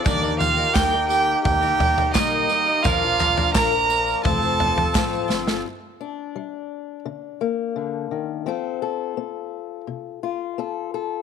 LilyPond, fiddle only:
\new Staff \with { instrumentName = "Fiddle" } { \time 4/4 \key g \minor \tempo 4 = 86 d''8 f''8 g''8 g''8 g''4 ees''4 | f''4 bes''4 a''4. r8 | r1 | r1 | }